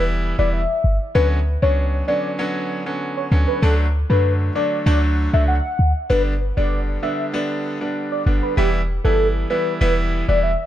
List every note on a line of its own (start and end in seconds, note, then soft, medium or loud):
0.00 0.33 E1 loud
0.00 0.35 E3 loud
0.00 0.35 G3 medium
0.00 0.35 B3 medium
0.00 0.35 E4 loud
0.38 0.66 E1 loud
0.38 0.59 E3 medium
0.38 0.60 G3 medium
0.38 0.60 B3 medium
0.38 0.60 E4 medium
0.38 0.50 D5 medium
0.53 0.98 E5 medium
0.84 0.99 G1 loud
1.15 1.57 D2 loud
1.15 1.37 D3 loud
1.15 1.37 F#3 medium
1.15 1.37 B3 medium
1.15 1.37 C#4 loud
1.15 1.27 B4 loud
1.62 2.03 C#2 medium
1.62 2.04 F#3 medium
1.62 2.04 B3 medium
1.62 2.05 C#4 medium
1.62 2.04 D4 medium
1.62 1.86 C#5 medium
2.08 2.36 D3 medium
2.08 2.36 F#3 medium
2.08 2.37 B3 medium
2.08 2.37 C#4 medium
2.08 2.31 D5 medium
2.39 2.82 D3 loud
2.39 2.82 F#3 medium
2.39 2.82 B3 medium
2.39 2.82 C#4 loud
2.86 3.28 D3 medium
2.86 3.28 F#3 medium
2.86 3.28 B3 medium
2.86 3.28 C#4 medium
3.17 3.28 C#5 medium
3.31 3.46 D2 loud
3.31 3.60 D3 medium
3.31 3.60 F#3 medium
3.31 3.60 B3 medium
3.31 3.60 C#4 medium
3.48 3.59 B4 medium
3.62 4.04 D2 loud
3.62 3.84 D3 loud
3.62 3.85 F#3 medium
3.62 3.85 A3 medium
3.62 3.85 D4 loud
3.62 3.75 A4 loud
4.10 4.50 F#2 medium
4.10 4.52 D3 medium
4.10 4.52 F#3 medium
4.10 4.52 A3 medium
4.10 4.52 D4 medium
4.10 4.33 B4 medium
4.55 4.84 D3 medium
4.55 4.84 F#3 medium
4.55 4.84 A3 medium
4.55 4.84 D4 medium
4.55 4.79 D5 medium
4.86 5.28 D2 loud
4.86 5.29 D3 loud
4.86 5.30 F#3 medium
4.86 5.30 A3 medium
4.86 5.30 D4 loud
4.86 4.99 D5 medium
5.33 5.61 C#2 loud
5.33 5.54 D3 medium
5.33 5.54 F#3 medium
5.33 5.55 A3 medium
5.33 5.55 D4 medium
5.33 5.45 E5 medium
5.48 5.92 F#5 medium
5.79 5.94 D2 loud
6.10 6.52 G1 loud
6.10 6.32 D3 loud
6.10 6.32 G3 medium
6.10 6.32 B3 medium
6.10 6.32 D4 loud
6.10 6.22 B4 loud
6.57 6.98 F#1 medium
6.57 6.99 D3 medium
6.57 6.99 G3 medium
6.57 6.99 B3 medium
6.57 6.99 D4 medium
6.57 6.80 D5 medium
7.02 7.31 D3 medium
7.02 7.31 G3 medium
7.02 7.31 B3 medium
7.02 7.31 D4 medium
7.02 7.26 E5 medium
7.33 7.77 D3 loud
7.33 7.77 G3 medium
7.33 7.77 B3 medium
7.33 7.77 D4 loud
7.81 8.23 D3 medium
7.81 8.23 G3 medium
7.81 8.23 B3 medium
7.81 8.23 D4 medium
8.12 8.23 D5 medium
8.26 8.41 G1 loud
8.26 8.55 D3 medium
8.26 8.55 G3 medium
8.26 8.55 B3 medium
8.26 8.55 D4 medium
8.43 8.54 B4 medium
8.57 8.99 E1 medium
8.57 8.79 E3 medium
8.57 8.79 G3 medium
8.57 8.79 B3 medium
8.57 8.80 E4 loud
8.57 8.69 G4 loud
9.04 9.45 G1 medium
9.04 9.47 E3 medium
9.04 9.47 G3 medium
9.04 9.47 B3 medium
9.04 9.47 E4 medium
9.04 9.28 A4 medium
9.50 9.79 E3 medium
9.50 9.79 G3 medium
9.50 9.79 B3 medium
9.50 9.79 E4 medium
9.50 9.73 B4 medium
9.81 10.23 E1 loud
9.81 10.24 E3 medium
9.81 10.24 G3 medium
9.81 10.24 B3 medium
9.81 10.25 E4 loud
9.81 9.93 B4 medium
10.28 10.56 E1 loud
10.28 10.49 E3 medium
10.28 10.49 G3 medium
10.28 10.49 B3 medium
10.28 10.50 E4 medium
10.28 10.39 D5 medium
10.43 10.66 E5 medium